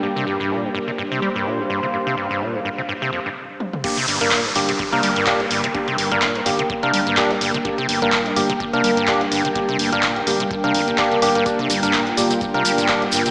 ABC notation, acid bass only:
X:1
M:4/4
L:1/16
Q:"Swing 16ths" 1/4=126
K:Gm
V:1 name="Acid bass" clef=bass
G,, C, G,, G,, B,, G,, G,, C, G,, C, G, G,, B,, G,, G,, C, | G,, C, G,, G,, B,, G,, G,, C, G,, C, F,, G,, z4 | G,, C, G,, G,, B,, G,, G,, C, G,, C, G, G,, B,, G,, G,, C, | G,, C, G,, G,, B,, G,, G,, C, G,, C, G, G,, B,, G,, G,, C, |
G,, C, G,, G,, B,, G,, G,, C, G,, C, G, G,, B,, G,, G,, C, | G,, C, G,, G,, B,, G,, G,, C, G,, C, F,, G,, G,, C, G,, G,, | G,, C, G,, G,, B,, G,, G,, C, G,, C, G, G,, B,, G,, G,, C, |]